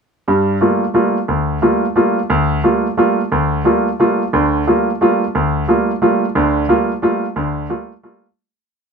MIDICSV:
0, 0, Header, 1, 2, 480
1, 0, Start_track
1, 0, Key_signature, -2, "minor"
1, 0, Tempo, 337268
1, 374, Time_signature, 3, 2, 24, 8
1, 12698, End_track
2, 0, Start_track
2, 0, Title_t, "Grand piano"
2, 0, Program_c, 0, 0
2, 393, Note_on_c, 0, 55, 61
2, 397, Note_on_c, 0, 43, 61
2, 798, Note_off_c, 0, 55, 0
2, 800, Note_off_c, 0, 43, 0
2, 866, Note_on_c, 0, 55, 49
2, 868, Note_on_c, 0, 57, 43
2, 874, Note_on_c, 0, 58, 43
2, 879, Note_on_c, 0, 65, 52
2, 1182, Note_off_c, 0, 55, 0
2, 1183, Note_off_c, 0, 57, 0
2, 1186, Note_off_c, 0, 58, 0
2, 1189, Note_off_c, 0, 65, 0
2, 1336, Note_on_c, 0, 55, 48
2, 1343, Note_on_c, 0, 57, 43
2, 1345, Note_on_c, 0, 58, 43
2, 1346, Note_on_c, 0, 65, 55
2, 1658, Note_off_c, 0, 55, 0
2, 1661, Note_off_c, 0, 57, 0
2, 1662, Note_off_c, 0, 58, 0
2, 1663, Note_off_c, 0, 65, 0
2, 1827, Note_on_c, 0, 38, 56
2, 2236, Note_off_c, 0, 38, 0
2, 2306, Note_on_c, 0, 55, 49
2, 2306, Note_on_c, 0, 58, 44
2, 2308, Note_on_c, 0, 57, 43
2, 2314, Note_on_c, 0, 65, 50
2, 2624, Note_off_c, 0, 55, 0
2, 2624, Note_off_c, 0, 58, 0
2, 2625, Note_off_c, 0, 57, 0
2, 2628, Note_off_c, 0, 65, 0
2, 2783, Note_on_c, 0, 55, 52
2, 2783, Note_on_c, 0, 57, 45
2, 2789, Note_on_c, 0, 58, 47
2, 2797, Note_on_c, 0, 65, 53
2, 3103, Note_off_c, 0, 55, 0
2, 3103, Note_off_c, 0, 57, 0
2, 3106, Note_off_c, 0, 58, 0
2, 3110, Note_off_c, 0, 65, 0
2, 3269, Note_on_c, 0, 38, 64
2, 3680, Note_off_c, 0, 38, 0
2, 3751, Note_on_c, 0, 55, 48
2, 3753, Note_on_c, 0, 57, 43
2, 3756, Note_on_c, 0, 58, 43
2, 3760, Note_on_c, 0, 65, 53
2, 4069, Note_off_c, 0, 55, 0
2, 4070, Note_off_c, 0, 57, 0
2, 4071, Note_off_c, 0, 58, 0
2, 4073, Note_off_c, 0, 65, 0
2, 4231, Note_on_c, 0, 55, 51
2, 4232, Note_on_c, 0, 57, 46
2, 4237, Note_on_c, 0, 58, 46
2, 4246, Note_on_c, 0, 65, 55
2, 4550, Note_off_c, 0, 55, 0
2, 4550, Note_off_c, 0, 57, 0
2, 4553, Note_off_c, 0, 58, 0
2, 4557, Note_off_c, 0, 65, 0
2, 4721, Note_on_c, 0, 38, 60
2, 5128, Note_off_c, 0, 38, 0
2, 5187, Note_on_c, 0, 55, 50
2, 5194, Note_on_c, 0, 57, 46
2, 5196, Note_on_c, 0, 58, 44
2, 5201, Note_on_c, 0, 65, 53
2, 5509, Note_off_c, 0, 55, 0
2, 5513, Note_off_c, 0, 57, 0
2, 5514, Note_off_c, 0, 58, 0
2, 5516, Note_off_c, 0, 65, 0
2, 5685, Note_on_c, 0, 55, 46
2, 5687, Note_on_c, 0, 58, 43
2, 5689, Note_on_c, 0, 57, 44
2, 5697, Note_on_c, 0, 65, 52
2, 5999, Note_off_c, 0, 55, 0
2, 6000, Note_off_c, 0, 58, 0
2, 6001, Note_off_c, 0, 57, 0
2, 6005, Note_off_c, 0, 65, 0
2, 6166, Note_on_c, 0, 38, 63
2, 6166, Note_on_c, 0, 50, 61
2, 6572, Note_off_c, 0, 50, 0
2, 6573, Note_off_c, 0, 38, 0
2, 6644, Note_on_c, 0, 55, 46
2, 6649, Note_on_c, 0, 57, 43
2, 6653, Note_on_c, 0, 58, 44
2, 6658, Note_on_c, 0, 65, 50
2, 6959, Note_off_c, 0, 55, 0
2, 6961, Note_off_c, 0, 57, 0
2, 6964, Note_off_c, 0, 58, 0
2, 6966, Note_off_c, 0, 65, 0
2, 7128, Note_on_c, 0, 55, 53
2, 7132, Note_on_c, 0, 57, 45
2, 7139, Note_on_c, 0, 58, 46
2, 7146, Note_on_c, 0, 65, 57
2, 7441, Note_off_c, 0, 55, 0
2, 7443, Note_off_c, 0, 57, 0
2, 7447, Note_off_c, 0, 58, 0
2, 7450, Note_off_c, 0, 65, 0
2, 7614, Note_on_c, 0, 38, 58
2, 8017, Note_off_c, 0, 38, 0
2, 8083, Note_on_c, 0, 55, 50
2, 8090, Note_on_c, 0, 58, 45
2, 8091, Note_on_c, 0, 57, 42
2, 8096, Note_on_c, 0, 65, 55
2, 8398, Note_off_c, 0, 55, 0
2, 8402, Note_off_c, 0, 57, 0
2, 8402, Note_off_c, 0, 58, 0
2, 8405, Note_off_c, 0, 65, 0
2, 8563, Note_on_c, 0, 55, 53
2, 8564, Note_on_c, 0, 57, 50
2, 8566, Note_on_c, 0, 58, 47
2, 8573, Note_on_c, 0, 65, 56
2, 8878, Note_off_c, 0, 55, 0
2, 8878, Note_off_c, 0, 57, 0
2, 8879, Note_off_c, 0, 58, 0
2, 8883, Note_off_c, 0, 65, 0
2, 9042, Note_on_c, 0, 38, 64
2, 9042, Note_on_c, 0, 50, 65
2, 9449, Note_off_c, 0, 38, 0
2, 9449, Note_off_c, 0, 50, 0
2, 9517, Note_on_c, 0, 57, 42
2, 9519, Note_on_c, 0, 55, 49
2, 9519, Note_on_c, 0, 58, 47
2, 9526, Note_on_c, 0, 65, 56
2, 9833, Note_off_c, 0, 57, 0
2, 9834, Note_off_c, 0, 55, 0
2, 9834, Note_off_c, 0, 58, 0
2, 9838, Note_off_c, 0, 65, 0
2, 9993, Note_on_c, 0, 55, 52
2, 10000, Note_on_c, 0, 58, 44
2, 10001, Note_on_c, 0, 57, 46
2, 10007, Note_on_c, 0, 65, 60
2, 10310, Note_off_c, 0, 55, 0
2, 10314, Note_off_c, 0, 58, 0
2, 10315, Note_off_c, 0, 57, 0
2, 10317, Note_off_c, 0, 65, 0
2, 10475, Note_on_c, 0, 38, 60
2, 10477, Note_on_c, 0, 50, 61
2, 10882, Note_off_c, 0, 38, 0
2, 10884, Note_off_c, 0, 50, 0
2, 10946, Note_on_c, 0, 55, 48
2, 10955, Note_on_c, 0, 57, 45
2, 10956, Note_on_c, 0, 58, 43
2, 10961, Note_on_c, 0, 65, 51
2, 11265, Note_off_c, 0, 55, 0
2, 11269, Note_off_c, 0, 57, 0
2, 11270, Note_off_c, 0, 58, 0
2, 11272, Note_off_c, 0, 65, 0
2, 11433, Note_on_c, 0, 55, 53
2, 11434, Note_on_c, 0, 57, 46
2, 11438, Note_on_c, 0, 58, 44
2, 11442, Note_on_c, 0, 65, 52
2, 11747, Note_off_c, 0, 55, 0
2, 11747, Note_off_c, 0, 57, 0
2, 11749, Note_off_c, 0, 58, 0
2, 11752, Note_off_c, 0, 65, 0
2, 12698, End_track
0, 0, End_of_file